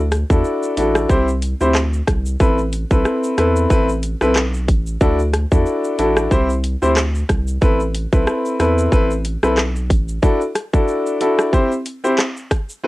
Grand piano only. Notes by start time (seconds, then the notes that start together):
0.30 D4 E4 F#4 A4
0.77 D4 E4 F#4 A4
1.10 C4 E4 G4 C5
1.60 C4 E4 G4 C5
2.40 C4 E4 A4 B4
2.91 C4 E4 A4 B4
3.38 C4 E4 A4 B4
3.70 C4 E4 A4 B4
4.21 C4 E4 A4 B4
5.01 D4 E4 F#4 A4
5.52 D4 E4 F#4 A4
5.99 D4 E4 F#4 A4
6.31 C4 E4 G4 C5
6.82 C4 E4 G4 C5
7.62 C4 E4 A4 B4
8.13 C4 E4 A4 B4
8.60 C4 E4 A4 B4
8.92 C4 E4 A4 B4
9.43 C4 E4 A4 B4
10.22 D4 E4 F#4 A4
10.73 D4 E4 F#4 A4
11.21 D4 E4 F#4 A4
11.53 C4 E4 G4 C5
12.04 C4 E4 G4 C5
12.84 C4 E4 A4 B4